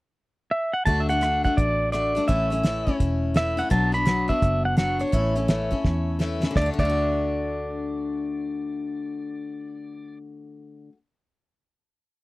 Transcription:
0.51 E5
0.73 F#5
0.85 D2 D3 A3 D4 F#4 A5, kick, closed hi-hat
1.00 E5
1.09 A3 D4 F#4 F#5, closed hi-hat
1.21 D3 A3 D4 F#4, cross-stick, closed hi-hat
1.44 A3 D4 F#4 F#5, kick
1.57 A1 D5, kick, closed hi-hat
1.92 D3 A3 D4 F#4 D5, cross-stick, closed hi-hat
2.15 A3 D4 F#4, closed hi-hat
2.28 A1 A2 E3 A3 C#4 E4 E5, kick, closed hi-hat
2.50 A3 C#4 E4, closed hi-hat
2.63 E3 A3 C#4 E4, snare, closed hi-hat
2.87 A3 C#4 E4, kick
3.00 E1, kick, closed hi-hat
3.34 E3 A3 C#4 E4 E5, snare, closed hi-hat
3.57 A3 C#4 E4 F#5, closed hi-hat
3.70 B1 B2 F#3 B3 D4 F#4 A5, kick, closed hi-hat
3.92 B3 D4 F#4 B5, closed hi-hat
4.05 F#3 B3 D4 F#4, snare, closed hi-hat
4.28 B3 D4 F#4 E5, kick
4.42 F#1, kick, closed hi-hat
4.65 F#5
4.77 F#3 B3 D4 F#4 F#5, snare, closed hi-hat
4.99 B3 D4 F#4 C#5, closed hi-hat
5.12 A1 A2 E3 A3 C#4 E4, kick, closed hi-hat
5.35 A3 C#4 E4, closed hi-hat
5.48 E3 A3 C#4 E4, snare, closed hi-hat
5.71 A3 C#4 E4, kick
5.85 E2, kick, snare
6.19 E3 A3 C#4 E4, snare
6.42 A3 C#4 E4, snare
6.51 D3
6.56 D2 A3 D5, kick, snare
6.62 D4
6.66 F#4
6.74 D3
6.79 D2 A3 D5, kick, crash
6.85 D4
6.90 F#4

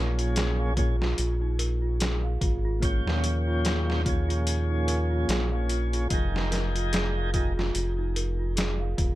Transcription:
Already playing: A#1 A#2 F3 C#4 D#4 G#4 A#4
0.18 F4, closed hi-hat
0.36 G#4, snare, closed hi-hat
0.59 F5
0.77 A#2 F3 C#4 F4 G#4, kick, closed hi-hat
1.01 F4, snare
1.18 A#1 F4, closed hi-hat
1.42 D#4
1.59 A#4, closed hi-hat
1.82 F4
2.00 G#4, snare, closed hi-hat
2.24 F5
2.41 G#1 F4, kick, closed hi-hat
2.65 F4
2.80 A#2 F3 C#4 F4, kick, closed hi-hat
2.85 G5
3.06 D#2 D#4, snare
3.23 A#4, closed hi-hat
3.47 F4
3.64 G#4, snare, closed hi-hat
3.87 F5, snare
4.04 A#2 F3 C#4 F4, kick, closed hi-hat
4.09 G#4
4.28 F4, closed hi-hat
4.46 F4, closed hi-hat
4.70 D#4
4.87 A#4, closed hi-hat
5.11 F4
5.28 A#1 G#4, snare, closed hi-hat
5.52 A#2 F3 C#4 G#4 F5
5.69 F4, closed hi-hat
5.93 F4, closed hi-hat
6.09 F1 F3 D#4 F4 G5, kick, closed hi-hat
6.13 G#4 A#4
6.34 D#4, snare
6.51 A#4, snare, closed hi-hat
6.75 F4, closed hi-hat
6.92 G#4, snare, closed hi-hat
7.17 F5
7.33 F3 D#4 F4 G4 G#4 A#4, kick, closed hi-hat
7.58 F4, snare
7.74 F1 F4, closed hi-hat
7.98 D#4
8.16 A#4, closed hi-hat
8.39 F4
8.56 G#4, snare, closed hi-hat
8.80 F5
8.97 D#1 F4, kick, closed hi-hat

